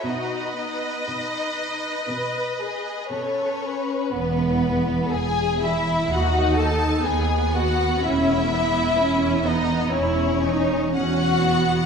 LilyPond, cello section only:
\new Staff \with { instrumentName = "Cello section" } { \clef bass \time 4/4 \key e \major \tempo 4 = 61 b,4 b,4 b,4 b,4 | e,4 e,4 dis,4 dis,4 | e,4 e,4 e,4 e,4 | }